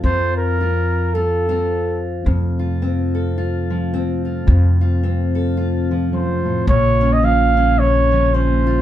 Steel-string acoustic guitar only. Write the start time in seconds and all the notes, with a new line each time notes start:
Already playing: C4 A4
0.04 F2 F4
0.61 F4
1.15 F4
1.49 C4 F4
2.26 F2
2.59 F4
2.82 C4
3.15 A4
3.38 F4
3.70 F3
3.94 C4
4.25 F4
4.47 F2
4.81 F4
5.03 C4
5.35 A4
5.57 F4
5.91 F3
6.13 F#2
6.45 A2
6.69 A#2
7.01 C#4
7.23 F3
7.57 C#4
7.78 F2
8.12 F3
8.34 C#4
8.67 F4